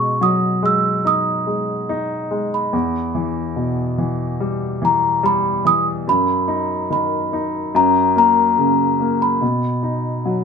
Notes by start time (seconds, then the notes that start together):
Already playing: B2 G#3 C#6
0.21 F#3 D#6
0.63 G#3 E6
1.05 D#4 D#6
1.47 G#3
1.89 D#4
2.31 G#3
2.54 B5
2.73 E2
3.15 E3
3.56 B2
3.98 E3
4.40 G3
4.82 E3 A#5
5.23 G3 B5
5.65 E3 D#6
6.07 F#2 B5
6.48 D#4
6.90 D#3 B5
7.33 D#4
7.75 F#2 A#5
8.16 A#3 A#5
8.58 C#3
9.00 A#3
9.22 B5
9.41 B2
9.83 D#4
10.25 F#3